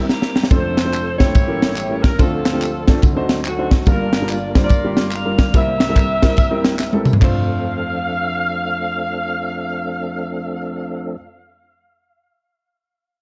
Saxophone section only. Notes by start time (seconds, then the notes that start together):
Already playing: A#4 E5
0.09 A#3 E4 G4
0.51 A4 C5
1.19 E4 G4 C#5
2.03 A#4
2.19 C4 F4 A4
3.46 A3 C4 F#4
3.87 D4 F4 A#4
4.29 F4 A#4 D5
4.64 F4 A#4 D5
5.14 A#4 D5 F5
5.55 G4 A#4 E5
7.22 F5